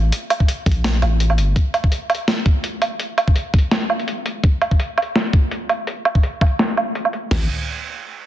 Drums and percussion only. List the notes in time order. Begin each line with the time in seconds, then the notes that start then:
0.12 closed hi-hat
0.30 closed hi-hat, low woodblock
0.40 kick
0.48 closed hi-hat
0.66 kick, closed hi-hat
0.72 closed hi-hat
0.84 snare, closed hi-hat
1.02 closed hi-hat, low woodblock
1.20 closed hi-hat
1.30 low woodblock
1.38 closed hi-hat
1.56 kick, closed hi-hat
1.74 closed hi-hat, low woodblock
1.84 kick
1.92 closed hi-hat
2.10 closed hi-hat, low woodblock
2.15 closed hi-hat
2.28 snare, closed hi-hat
2.46 kick, closed hi-hat
2.64 closed hi-hat
2.82 closed hi-hat, low woodblock
3.00 closed hi-hat
3.18 closed hi-hat, low woodblock
3.28 kick
3.36 closed hi-hat
3.54 kick, closed hi-hat
3.59 closed hi-hat
3.71 snare, closed hi-hat
3.90 low woodblock
4.00 closed hi-hat
4.08 closed hi-hat
4.26 closed hi-hat
4.44 kick, closed hi-hat
4.62 closed hi-hat, low woodblock
4.71 kick
4.80 closed hi-hat
4.98 closed hi-hat, low woodblock
5.02 closed hi-hat
5.16 snare, closed hi-hat
5.33 kick, closed hi-hat
5.51 closed hi-hat
5.69 closed hi-hat, low woodblock
5.87 closed hi-hat
6.05 closed hi-hat, low woodblock
6.15 kick
6.23 closed hi-hat
6.41 kick, closed hi-hat, low woodblock
6.46 closed hi-hat
6.59 snare, closed hi-hat
6.77 closed hi-hat, low woodblock
6.95 closed hi-hat
7.05 low woodblock
7.13 closed hi-hat
7.31 snare, floor tom, crash